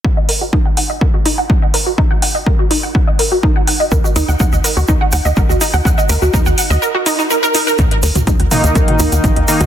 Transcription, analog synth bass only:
\new Staff \with { instrumentName = "Analog synth bass" } { \clef bass \time 4/4 \key ees \minor \tempo 4 = 124 r1 | r1 | ees,16 r16 ees,16 ees,16 ees,16 ees,16 r16 ees,16 ees,16 r16 ees,16 ees,16 bes,,16 ees,16 r16 ees,16 | ees,16 r16 ees,16 ees,16 ees,16 ees,16 r16 ees,16 r2 |
ees,16 r16 ees,16 ees,16 ees,16 ees,16 r16 ees,16 ees,16 r16 ees,16 ees,16 bes,,16 ees,16 r16 ees,16 | }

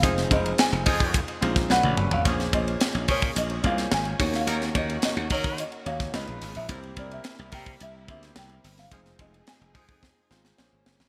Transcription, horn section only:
\new Staff \with { instrumentName = "Horn section" } { \time 4/4 \key bes \minor \tempo 4 = 108 <f aes ees' aes'>16 r4 r16 <f aes ees' aes'>8. r4. r16 | <f aes des' aes'>16 r4 r16 <f aes des' aes'>8 r2 | <ges bes ees' bes'>16 r4 r16 <ges bes ees' bes'>8. r4. r16 | <g bes e' bes'>16 r4 r16 <g bes e' bes'>8 r2 |
<f aes ees' aes'>16 r4 r16 <f aes ees' aes'>8 r2 | }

